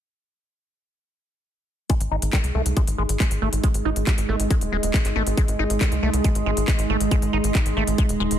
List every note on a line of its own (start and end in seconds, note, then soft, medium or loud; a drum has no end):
1.90 8.39 G#3 medium
1.90 1.94 G#3 medium
1.90 8.39 D#4 medium
1.90 kick loud
1.90 closed hi-hat medium
2.00 2.08 G#1 medium
2.00 closed hi-hat medium
2.09 2.19 G#1 loud
2.09 2.16 D#4 medium
2.09 8.39 G#4 medium
2.22 2.30 G#1 medium
2.22 closed hi-hat medium
2.33 2.38 G3 medium
2.33 kick loud
2.33 clap loud
2.33 closed hi-hat medium
2.44 2.51 C2 medium
2.44 closed hi-hat medium
2.55 2.62 C2 loud
2.55 2.62 A3 medium
2.66 2.73 C2 medium
2.66 closed hi-hat medium
2.77 2.81 G#3 medium
2.77 kick loud
2.77 closed hi-hat medium
2.87 2.95 G#1 medium
2.87 closed hi-hat medium
2.98 3.06 G#1 loud
2.98 3.03 G#3 medium
3.09 3.17 G#1 medium
3.09 closed hi-hat medium
3.20 3.25 G#3 medium
3.20 kick loud
3.20 clap loud
3.20 closed hi-hat medium
3.31 3.38 G#1 medium
3.31 8.39 D#5 medium
3.31 closed hi-hat medium
3.42 3.49 G#1 loud
3.42 3.49 A3 medium
3.53 3.60 G#1 medium
3.53 closed hi-hat medium
3.64 3.68 G#3 medium
3.64 kick loud
3.64 closed hi-hat medium
3.74 3.82 G#1 medium
3.74 closed hi-hat medium
3.85 3.93 G#1 loud
3.85 3.90 D#4 medium
3.96 4.04 G#1 medium
3.96 closed hi-hat medium
4.07 4.12 G3 medium
4.07 kick loud
4.07 clap loud
4.07 closed hi-hat medium
4.18 4.25 G#1 medium
4.18 closed hi-hat medium
4.29 4.36 G#1 loud
4.29 4.36 A3 medium
4.40 4.47 G#1 medium
4.40 closed hi-hat medium
4.50 4.55 G#3 medium
4.50 kick loud
4.50 closed hi-hat medium
4.61 4.69 D#1 medium
4.61 closed hi-hat medium
4.72 4.80 D#1 loud
4.72 4.77 G#3 medium
4.83 4.90 D#1 medium
4.83 closed hi-hat medium
4.94 4.99 G#3 medium
4.94 kick loud
4.94 clap loud
4.94 closed hi-hat medium
5.05 5.12 G#1 medium
5.05 clap soft
5.05 closed hi-hat medium
5.16 5.23 G#1 loud
5.16 5.23 A3 medium
5.27 5.34 G#1 medium
5.27 closed hi-hat medium
5.37 5.42 G#3 medium
5.37 kick loud
5.37 closed hi-hat medium
5.48 5.56 G#1 medium
5.48 closed hi-hat medium
5.59 5.67 G#1 loud
5.59 5.64 D#4 medium
5.70 5.77 G#1 medium
5.70 closed hi-hat medium
5.81 5.86 G3 medium
5.81 kick loud
5.81 clap loud
5.81 closed hi-hat medium
5.92 5.99 C2 medium
5.92 closed hi-hat medium
6.03 6.10 C2 loud
6.03 6.10 A3 medium
6.14 6.21 C2 medium
6.14 closed hi-hat medium
6.24 6.29 G#3 medium
6.24 kick loud
6.24 closed hi-hat medium
6.35 6.43 G#1 medium
6.35 closed hi-hat medium
6.46 6.54 G#1 loud
6.46 6.51 G#3 medium
6.57 6.64 G#1 medium
6.57 closed hi-hat medium
6.68 6.73 G#3 medium
6.68 kick loud
6.68 clap loud
6.68 closed hi-hat medium
6.79 6.86 G#1 medium
6.79 closed hi-hat medium
6.90 6.97 G#1 loud
6.90 6.97 A3 medium
7.01 7.08 G#1 medium
7.01 closed hi-hat medium
7.11 7.16 G#3 medium
7.11 kick loud
7.11 closed hi-hat medium
7.22 7.30 G#1 medium
7.22 closed hi-hat medium
7.33 7.40 G#1 loud
7.33 7.38 D#4 medium
7.44 7.51 G#1 medium
7.44 closed hi-hat medium
7.55 7.60 G3 medium
7.55 kick loud
7.55 clap loud
7.55 closed hi-hat medium
7.66 7.73 G#1 medium
7.66 closed hi-hat medium
7.77 7.84 G#1 loud
7.77 7.84 A3 medium
7.87 7.95 G#1 medium
7.87 closed hi-hat medium
7.98 8.03 G#3 medium
7.98 kick loud
7.98 closed hi-hat medium
8.09 8.17 D#1 medium
8.09 closed hi-hat medium
8.20 8.27 D#1 loud
8.20 8.23 G#3 medium
8.31 8.38 D#1 medium
8.31 closed hi-hat medium